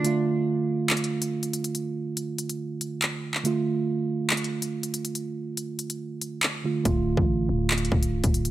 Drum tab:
HH |x-----------------------x-x-x----x-----x--x--x--|x-----------x-----x--x--------x-----x-----------|x-----------------------x-x-x----x-----x--x--x--|x-----------x-----x--x--------x-----x-----------|
CP |------------------------x-----------------------|------------------------------------x--------x--|------------------------x-----------------------|------------------------------------x-----------|
BD |------------------------------------------------|------------------------------------------------|------------------------------------------------|------------------------------------------------|

HH |x-----------------------x-x-x----x-----x--x--x--|
CP |------------------------x-----------------------|
BD |o--------o--------------------o--------o--------|